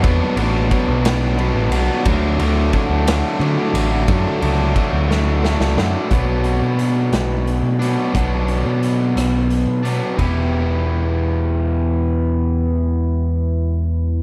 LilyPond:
<<
  \new Staff \with { instrumentName = "Overdriven electric guitar" } { \time 6/8 \key e \minor \tempo 4. = 59 <b, fis b d'>8 <fis b d'>8 <b, fis b d'>8 <fis b d'>8 <b, fis b d'>8 <fis b d'>8 | <d fis a d'>8 <fis a d'>8 <d fis a d'>8 <fis a d'>8 <d fis a d'>8 <fis a d'>8 | <d fis a d'>8 <fis a d'>8 <d fis a d'>8 <fis a d'>8 <d fis a d'>8 <fis a d'>8 | <b, fis b d'>2~ <b, fis b d'>8 <b, fis b d'>8 |
<b, fis b d'>2~ <b, fis b d'>8 <b, fis b d'>8 | <e b e' g'>2.~ | <e b e' g'>2. | }
  \new Staff \with { instrumentName = "Picked electric bass" } { \clef bass \time 6/8 \key e \minor e,16 r16 a,,8 r16 b,,4 a,,16 b,,16 r16 | d,8 d,8 r16 d,8 r16 d16 r16 a,,8 | fis,16 r16 cis,8 r16 d,4 cis,16 fis,16 r16 | b,,8. b,8. b,,8. b,8 r16 |
b,,8. b,8. b,,8. b,8 r16 | e,,2.~ | e,,2. | }
  \new DrumStaff \with { instrumentName = "Drums" } \drummode { \time 6/8 <bd cymr>8 cymr8 <bd cymr>8 <cymr sn>8 cymr8 cymr8 | <bd cymr>8 cymr8 <bd cymr>8 <cymr sn>8 cymr8 cymr8 | <bd cymr>8 cymr8 <bd cymr>8 sn8 sn16 sn16 sn8 | <hh bd>8 hh8 hh8 <hh sn>8 hh8 hh8 |
<hh bd>8 hh8 hh8 <hh ss>8 hh8 hh8 | <bd cymr>4. r4. | r4. r4. | }
>>